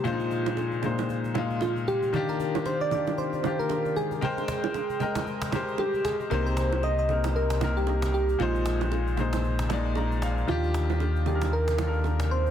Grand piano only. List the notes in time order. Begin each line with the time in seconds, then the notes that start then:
0.04 A#2 G#3 D4 C5
0.12 D#4
0.82 A#2 G#3 D#4 C5
1.34 A#2 G#3 D#4 F4
2.13 D#3 D4 F4 G4
2.91 D#3 D4 F4 G4
3.43 D#3 D4 F4 G4
4.21 G#3 A#4 C5 G5
5.00 G#3 A#4 D#5 G5
5.52 G#3 G4 A#4 C5
6.30 C3 A#3 D#4 C5
7.08 C3 A#3 D#4 A#4
7.60 C3 A#3 D#4 A#4
8.39 A#2 G#3 D#4 C5
9.17 A#2 G#3 D#4 C5
9.69 A#2 G#3 D#4 D5
9.97 A#5
10.23 F5
10.47 D#3 D4 F4 G4
11.26 D#3 D4 F4 G#4
11.35 A#4
11.78 D#3 D4 F4 A4
11.87 A#4